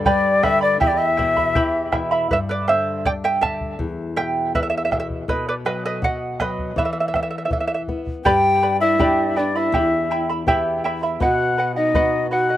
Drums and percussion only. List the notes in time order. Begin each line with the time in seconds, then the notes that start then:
0.05 bombo low
0.44 bombo rim, bombo low
0.81 bombo low
1.19 bombo low
1.37 bombo low
1.55 bombo low
1.93 bombo rim, bombo low
2.31 bombo low
2.68 bombo rim
3.05 bombo low
3.43 bombo rim, bombo low
3.61 bombo low
3.79 bombo low
4.17 bombo rim
4.55 bombo low
4.92 bombo rim, bombo low
5.10 bombo low
5.28 bombo low
5.66 bombo rim
6.03 bombo low
6.40 bombo rim, bombo low
6.59 bombo low
6.77 bombo low
7.14 bombo rim, bombo low
7.51 bombo low
7.88 bombo low
8.07 bombo low
8.25 bombo low
8.99 bombo low
9.73 bombo low
10.47 bombo low
11.21 bombo low
11.94 bombo low